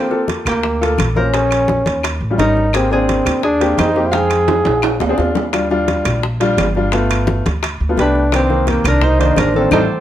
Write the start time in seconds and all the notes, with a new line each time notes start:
Already playing: C4 G4 A#4
0.10 A#3 F4 A4, high bongo, high conga
0.28 high bongo, high conga, high timbale
0.45 D2 A#3 G4, high bongo, low conga, high timbale, claves
0.63 high bongo, high conga
0.81 A#3 F4 A4, high conga, high timbale
0.98 A#1, high bongo, low bongo, high conga, high timbale, claves
1.15 A#3 C#4 F4 A#4 C5, high bongo, high conga
1.33 C#4 G#4 C5, high bongo, high conga, high timbale
1.51 high bongo, high conga, high timbale, claves
1.68 high bongo, high conga
1.86 D#2, high bongo, high conga, high timbale
2.03 high bongo, high conga, high timbale, claves
2.21 A1, high conga
2.30 G3 C#4 F4
2.38 G#1 G3 C#4 D#4 A#4, high bongo, low bongo, high conga, high timbale
2.56 high bongo, high conga
2.73 A#3 C4 G4 G#4, high bongo, high conga, high timbale, claves
2.91 A#3 C4 D4 G#4, high bongo, high conga
3.09 high bongo, high conga, high timbale
3.26 D#2, high bongo, low conga, high timbale, claves
3.43 D4 G#4, high bongo, high conga
3.60 A#3 C4 G4, high conga, high timbale
3.78 F2 D#4 C5, high bongo, low bongo, high conga, high timbale, low timbale, claves
3.95 A#3 C4 G4, high bongo
4.11 G#3 D#4 G#4 F5 G5, high bongo, high conga, high timbale
4.30 high bongo, high conga, high timbale, claves
4.48 high bongo, high conga, high timbale
4.65 A#1, high bongo, high conga, high timbale
4.82 high bongo, high conga, high timbale, claves
5.00 D2, high bongo, high conga, low timbale
5.09 C4 D4 G#4
5.18 D#2 C4 D4 F4, high bongo, high conga, low timbale
5.35 low bongo, high conga, low timbale
5.53 G3 D4 F4, high bongo, high conga, high timbale, claves
5.71 G3 D4 F4, high bongo, high conga
5.88 high bongo, high conga, high timbale
6.05 A#1, high bongo, low conga, high timbale, claves
6.23 high bongo, high conga
6.40 G3 D4 F4, high conga, high timbale
6.57 G1, high bongo, low bongo, high conga, high timbale, low timbale, claves
6.75 G3 D4 F4, high bongo
6.92 A3 B3 F4, high bongo, high conga, high timbale
7.10 high bongo, high conga, high timbale, claves
7.27 high bongo, high conga
7.45 D2, high bongo, high conga, high timbale
7.63 high bongo, high conga, high timbale, claves
7.80 D2, high conga
7.89 A3 B3 F4
7.97 C2 A3 B3 D4 G4 B4, high bongo, low bongo, high conga, high timbale
8.15 high bongo, high conga
8.32 D#3 A#3 C4 D4 G4, high bongo, high conga, high timbale, claves
8.50 D#3 A#3 C4, high bongo, high conga
8.67 A#3 G4, high bongo, high conga, high timbale
8.84 C2 D4 A#4, high bongo, low conga, high timbale, claves
9.01 D#4 C5, high bongo, high conga, low conga
9.19 D#3 A#3 D4 D#4 C5, high conga, high timbale
9.36 A1 D4 A#4, high bongo, low bongo, high conga, high timbale, low timbale, claves
9.54 D#3 A#3 C4 D4 A4, high bongo
9.71 A1 G3 A3 C4 D#4 G4 A4 C5, low bongo, high conga, high timbale, claves